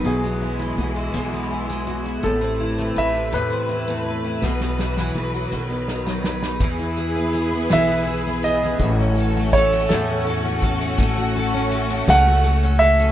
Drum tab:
CC |------------|------------|------------|x-----------|
HH |------------|------------|------------|--x-x-x-x-x-|
SD |------------|------------|oooo----oooo|------o-----|
BD |------------|------------|------------|o-----------|

CC |------------|------------|
HH |x-x-x-x-x-x-|x-x-x-x-x-x-|
SD |------o-----|------o-----|
BD |o---o-----o-|o-----------|